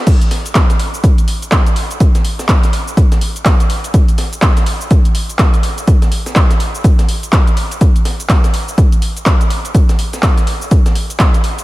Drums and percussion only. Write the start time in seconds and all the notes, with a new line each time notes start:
0.07 kick, closed hi-hat, crash, shaker
0.21 closed hi-hat, shaker
0.31 snare, closed hi-hat, open hi-hat
0.46 closed hi-hat, shaker
0.55 kick, snare, clap, closed hi-hat, shaker
0.70 snare, closed hi-hat, shaker
0.79 closed hi-hat, open hi-hat
0.94 shaker
1.04 kick, closed hi-hat, shaker
1.18 closed hi-hat, shaker
1.28 closed hi-hat, open hi-hat
1.42 closed hi-hat, shaker
1.52 kick, snare, clap, closed hi-hat, shaker
1.66 closed hi-hat, shaker
1.76 closed hi-hat, open hi-hat
1.91 closed hi-hat, shaker
2.00 kick, closed hi-hat, shaker
2.15 snare, closed hi-hat, shaker
2.25 closed hi-hat, open hi-hat
2.39 snare, closed hi-hat, shaker
2.48 kick, snare, clap, closed hi-hat, shaker
2.63 snare, closed hi-hat, shaker
2.73 closed hi-hat, open hi-hat
2.88 shaker
2.97 kick, closed hi-hat, shaker
3.12 snare, closed hi-hat, shaker
3.21 closed hi-hat, open hi-hat
3.36 closed hi-hat, shaker
3.45 kick, snare, clap, closed hi-hat, shaker
3.60 closed hi-hat, shaker
3.70 closed hi-hat, open hi-hat
3.84 closed hi-hat, shaker
3.94 kick, closed hi-hat, shaker
4.08 closed hi-hat, shaker
4.18 snare, closed hi-hat, open hi-hat
4.33 closed hi-hat, shaker
4.42 kick, snare, clap, closed hi-hat, shaker
4.57 snare, closed hi-hat, shaker
4.66 closed hi-hat, open hi-hat
4.81 shaker
4.91 kick, closed hi-hat, shaker
5.05 closed hi-hat, shaker
5.15 closed hi-hat, open hi-hat
5.29 closed hi-hat, shaker
5.39 kick, snare, clap, closed hi-hat, shaker
5.54 closed hi-hat, shaker
5.63 closed hi-hat, open hi-hat
5.78 closed hi-hat, shaker
5.87 kick, closed hi-hat, shaker
6.02 snare, closed hi-hat, shaker
6.12 closed hi-hat, open hi-hat
6.26 snare, closed hi-hat, shaker
6.36 kick, snare, clap, closed hi-hat, shaker
6.50 snare, closed hi-hat, shaker
6.60 closed hi-hat, open hi-hat
6.75 shaker
6.84 kick, closed hi-hat, shaker
6.99 snare, closed hi-hat, shaker
7.08 closed hi-hat, open hi-hat
7.23 closed hi-hat, shaker
7.32 kick, snare, clap, closed hi-hat, shaker
7.47 closed hi-hat, shaker
7.57 closed hi-hat, open hi-hat
7.71 closed hi-hat, shaker
7.81 kick, closed hi-hat, shaker
7.96 closed hi-hat, shaker
8.05 snare, closed hi-hat, open hi-hat
8.20 closed hi-hat, shaker
8.29 kick, snare, clap, closed hi-hat, shaker
8.44 snare, closed hi-hat, shaker
8.54 closed hi-hat, open hi-hat
8.69 shaker
8.78 kick, closed hi-hat, shaker
8.92 closed hi-hat, shaker
9.02 closed hi-hat, open hi-hat
9.17 closed hi-hat, shaker
9.26 kick, snare, clap, closed hi-hat, shaker
9.41 closed hi-hat, shaker
9.50 closed hi-hat, open hi-hat
9.65 closed hi-hat, shaker
9.75 kick, closed hi-hat, shaker
9.89 snare, closed hi-hat, shaker
9.99 closed hi-hat, open hi-hat
10.13 snare, closed hi-hat, shaker
10.23 kick, snare, clap, closed hi-hat, shaker
10.37 snare, closed hi-hat, shaker
10.47 closed hi-hat, open hi-hat
10.62 shaker
10.71 kick, closed hi-hat, shaker
10.86 snare, closed hi-hat, shaker
10.95 closed hi-hat, open hi-hat
11.10 closed hi-hat, shaker
11.19 kick, snare, clap, closed hi-hat, shaker
11.34 closed hi-hat, shaker
11.44 closed hi-hat, open hi-hat
11.58 closed hi-hat, shaker